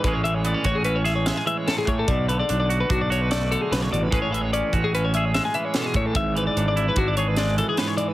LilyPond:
<<
  \new Staff \with { instrumentName = "Clean electric guitar" } { \time 5/4 \key a \major \tempo 4 = 148 b'16 cis''16 e''16 cis''16 d''8 cis''16 gis'16 b'16 cis''16 e''16 cis''16 e''16 gis''16 e''16 cis''16 a'16 gis'16 cis''16 a'16 | d''8 b'16 d''8 d''8 b'16 fis'16 d''16 cis''16 b'16 d''8 a'16 gis'16 b'16 cis''16 d''16 b'16 | b'16 cis''16 e''16 cis''16 d''8 cis''16 gis'16 b'16 cis''16 e''16 cis''16 e''16 gis''16 e''16 cis''16 a'16 gis'16 cis''16 a'16 | e''8 b'16 d''8 d''8 b'16 fis'16 d''16 cis''16 b'16 d''8 a'16 gis'16 b'16 cis''16 d''16 b'16 | }
  \new Staff \with { instrumentName = "Clean electric guitar" } { \clef bass \time 5/4 \key a \major << { <e gis cis' gis'>4 b16 cis'16 fis'8 cis'8 gis'8 gis2 | r4 d'8 fis'8 d'8 fis'8 a2 | <e gis cis' gis'>4 cis'8 fis'8 cis'8 gis'8 gis2 | r4 d'8 e'8 d'8 gis'8 gis2 | } \\ { a,8 e2. e8 a,8 e8 | b,8 d2. d8 cis8 b,8 | a,8 e2. e8 b,8 a,8 | gis,8 e2. e8 gis,8 e8 | } >> }
  \new Staff \with { instrumentName = "Fingered electric bass" } { \clef bass \time 5/4 \key a \major a,,4. a,,2 r4 a,8 | b,,4 b,,4 b,,2 b,,8 a,,8 | a,,4. a,,2 r4 a,8 | gis,,4 gis,,4 gis,,2 r4 | }
  \new DrumStaff \with { instrumentName = "Drums" } \drummode { \time 5/4 <hh bd>8 hh8 hh8 <hh bd>8 hh8 <hh sn>8 <hh sn>8 hh8 <hh sn>8 <hh bd>8 | <hh bd>8 hh8 hh8 hh8 <hh bd>8 hh8 <hh sn>8 hh8 <hh sn>8 hh8 | <hh bd>8 hh8 hh8 <hh bd>8 hh8 hh8 <hh sn>8 hh8 <hh sn>8 <hh bd>8 | <hh bd>8 hh8 hh8 hh8 <hh bd>8 hh8 <hh sn>8 hh8 <hh sn>8 hh8 | }
>>